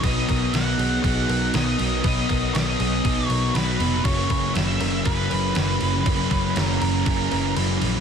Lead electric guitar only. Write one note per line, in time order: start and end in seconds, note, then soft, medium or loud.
0.04 0.55 D#5 loud
0.53 1.02 F#5 loud
1.03 1.55 F#5 medium
1.55 2.03 D#5 loud
2.04 2.53 D#5 medium
2.54 3.26 D#5 medium
3.26 3.57 C#5 medium
3.54 4.06 B4 medium
4.04 4.51 C#5 medium
4.54 5.06 E5 loud
5.06 6.61 B4 medium
6.61 7.53 A#4 medium